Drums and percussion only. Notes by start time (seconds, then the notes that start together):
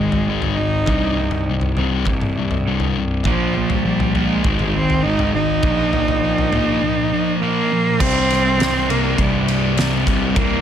0.12 floor tom
0.42 floor tom
0.86 kick, floor tom
1.31 floor tom
1.61 floor tom
1.77 floor tom
2.05 kick, floor tom
2.21 mid tom
2.51 floor tom
2.80 floor tom
3.24 kick, floor tom
3.70 floor tom
4.00 floor tom
4.15 floor tom
4.44 kick, floor tom
4.59 mid tom
4.90 floor tom
5.19 floor tom
5.63 kick, floor tom
5.93 floor tom
6.08 floor tom
6.38 floor tom
6.53 floor tom, mid tom
8.00 kick, crash
8.30 snare, ride
8.60 snare, ride
8.90 ride
9.18 kick, ride
9.48 ride
9.77 snare, ride
10.07 kick, ride
10.36 kick, ride